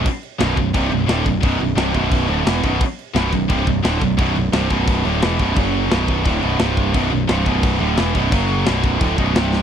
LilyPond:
<<
  \new Staff \with { instrumentName = "Distorted electric guitar" } { \clef bass \time 4/4 \key b \minor \tempo 4 = 174 r4 <b,, fis, b,>8 <b,, fis,>8 <c, g, c>8 <b,, fis,>8 <d, a, d>8 <b,, fis,>8 | <b,, fis, b,>8 <b,, fis,>8 <c, g, c>8 <b,, fis, b,>4 <d, a, d>8 <e, b, e>8 <b,, fis, b,>8 | r4 <b,, fis, b,>8 <b,, fis,>8 <c, g, c>8 <b,, fis,>8 <d, a, d>8 <b,, fis,>8 | <b,, fis, b,>8 <b,, fis,>8 <c, g, c>8 <b,, fis, b,>4 <d, a, d>8 <e, b, e>8 <b,, fis, b,>8 |
<fis, cis fis>4 <b,, fis, b,>4 <d, a, d>8 <b,, fis, b,>8 <c, g, c>4 | <b,, fis, b,>8 <b,, fis,>8 <c, g, c>8 <b,, fis, b,>4 <d, a, d>8 <e, b, e>8 <b,, fis, b,>8 | <fis, cis fis>4 <b,, fis, b,>4 <d, a, d>8 <b,, fis, b,>8 <c, g, c>4 | }
  \new Staff \with { instrumentName = "Distorted electric guitar" } { \clef bass \time 4/4 \key b \minor r4 <b,, fis, b,>8 <b,, fis,>8 <c, g, c>8 <b,, fis,>8 <d, a, d>8 <b,, fis,>8 | <b,, fis, b,>8 <b,, fis,>8 <c, g, c>8 <b,, fis, b,>4 <d, a, d>8 <e, b, e>8 <b,, fis, b,>8 | r4 <b,, fis, b,>8 <b,, fis,>8 <c, g, c>8 <b,, fis,>8 <d, a, d>8 <b,, fis,>8 | <b,, fis, b,>8 <b,, fis,>8 <c, g, c>8 <b,, fis, b,>4 <d, a, d>8 <e, b, e>8 <b,, fis, b,>8 |
<fis, cis fis>4 <b,, fis, b,>4 <d, a, d>8 <b,, fis, b,>8 <c, g, c>4 | <b,, fis, b,>8 <b,, fis,>8 <c, g, c>8 <b,, fis, b,>4 <d, a, d>8 <e, b, e>8 <b,, fis, b,>8 | <fis, cis fis>4 <b,, fis, b,>4 <d, a, d>8 <b,, fis, b,>8 <c, g, c>4 | }
  \new Staff \with { instrumentName = "Distorted electric guitar" } { \clef bass \time 4/4 \key b \minor r4 <b,, fis, b,>8 <b,, fis,>8 <c, g, c>8 <b,, fis,>8 <d, a, d>8 <b,, fis,>8 | <b,, fis, b,>8 <b,, fis,>8 <c, g, c>8 <b,, fis, b,>4 <d, a, d>8 <e, b, e>8 <b,, fis, b,>8 | r4 <b,, fis, b,>8 <b,, fis,>8 <c, g, c>8 <b,, fis,>8 <d, a, d>8 <b,, fis,>8 | <b,, fis, b,>8 <b,, fis,>8 <c, g, c>8 <b,, fis, b,>4 <d, a, d>8 <e, b, e>8 <b,, fis, b,>8 |
<fis, cis fis>4 <b,, fis, b,>4 <d, a, d>8 <b,, fis, b,>8 <c, g, c>4 | <b,, fis, b,>8 <b,, fis,>8 <c, g, c>8 <b,, fis, b,>4 <d, a, d>8 <e, b, e>8 <b,, fis, b,>8 | <fis, cis fis>4 <b,, fis, b,>4 <d, a, d>8 <b,, fis, b,>8 <c, g, c>4 | }
  \new Staff \with { instrumentName = "Picked electric bass" } { \clef bass \time 4/4 \key b \minor r4 b,,,8 b,,,8 c,,8 b,,,8 d,,8 b,,,8 | b,,,8 b,,,8 c,,8 b,,,4 d,,8 e,,8 b,,,8 | r4 b,,,8 b,,,8 c,,8 b,,,8 d,,8 b,,,8 | b,,,8 b,,,8 c,,8 b,,,4 d,,8 e,,8 b,,,8 |
fis,,4 b,,,4 d,,8 b,,,8 c,,4 | b,,,8 b,,,8 c,,8 b,,,4 d,,8 e,,8 b,,,8 | fis,,4 b,,,4 d,,8 b,,,8 c,,4 | }
  \new DrumStaff \with { instrumentName = "Drums" } \drummode { \time 4/4 <cymc bd>8 cymc8 <cymc sn>8 <cymc bd>8 <cymc bd>8 cymc8 <cymc sn>8 <cymc bd>8 | <cymc bd>8 cymc8 <cymc sn>8 <cymc bd>8 <cymc bd>8 cymc8 <cymc sn>8 <cymc bd>8 | <cymc bd>8 cymc8 <cymc sn>8 <cymc bd>8 <cymc bd>8 <cymc bd>8 <cymc sn>8 <cymc bd>8 | <cymc bd>8 cymc8 <cymc sn>8 <cymc bd>8 <cymc bd>8 cymc8 <cymc sn>8 <cymc bd>8 |
<cymc bd>8 cymc8 <cymc sn>8 <cymc bd>8 <cymc bd>8 cymc8 <cymc sn>8 <cymc bd>8 | <cymc bd>8 cymc8 <cymc sn>8 <cymc bd>8 <cymc bd>8 cymc8 <cymc sn>8 <cymc bd>8 | <cymc bd>8 cymc8 <cymc sn>8 <cymc bd>8 <cymc bd>8 <cymc bd>8 <cymc sn>8 sn8 | }
>>